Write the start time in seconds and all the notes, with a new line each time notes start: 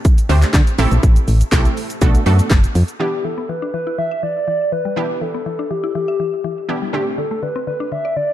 Already playing: A3 C4 D4 G4 A4
0.05 kick, closed hi-hat, shaker
0.18 closed hi-hat, shaker
0.29 D2 A3 C4 D4 G4 C5, open hi-hat, shaker
0.42 clap, closed hi-hat, shaker
0.53 D3, kick, snare, clap, closed hi-hat, shaker
0.67 closed hi-hat, shaker
0.78 A1 A3 C4 E4 G4 A4, open hi-hat, shaker
0.91 A#1, closed hi-hat, shaker
1.03 A1, kick, closed hi-hat, shaker
1.16 closed hi-hat, shaker
1.28 A1, open hi-hat, shaker
1.41 closed hi-hat, shaker
1.52 B1 A3 C4 E4 G4 A4, kick, snare, clap, closed hi-hat, shaker
1.65 closed hi-hat, shaker
1.77 open hi-hat, shaker
1.90 closed hi-hat, shaker
2.01 B1 A3 B3 D4 F#4 A4, kick, closed hi-hat, shaker
2.15 closed hi-hat, shaker
2.26 F#2 A3 B3 D4 F#4 A4, open hi-hat, shaker
2.39 closed hi-hat, shaker
2.50 F#1, kick, snare, clap, closed hi-hat, shaker
2.64 closed hi-hat, shaker
2.75 F2, open hi-hat, shaker
2.88 closed hi-hat, shaker
3.00 E3 B3 D4 E4 G4
3.25 E3 A4
3.38 B3
3.49 E3 B4
3.62 D4
3.74 E3 B4
3.87 E4
3.98 E3 E5
4.11 E5
4.23 E3 D5
4.48 E3
4.72 E3 B4
4.85 G3
4.96 E3 B3 D4 E4 G4
5.21 E3 A4
5.34 B3
5.46 E3
5.59 D4
5.71 E3 G4
5.84 E4
5.95 E3 G4
6.08 E5
6.20 E3
6.44 E3
6.69 E3 B3 D4 E4 G4
6.82 G3
6.93 D3 A3 C4 D4 G4
7.18 D3 A4
7.31 A3
7.43 D3 B4
7.56 C4
7.67 D3 B4
7.80 D4
7.92 D3 E5
8.05 D5
8.16 D3 D5